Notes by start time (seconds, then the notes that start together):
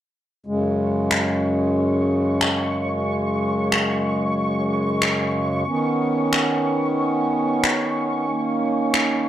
0.46 F#2 C#3 G#3 C#6
1.11 finger snap
2.41 finger snap
3.72 finger snap
5.02 finger snap
5.67 D#3 B3 C#4
6.33 finger snap
7.64 finger snap
8.28 A#3
8.94 finger snap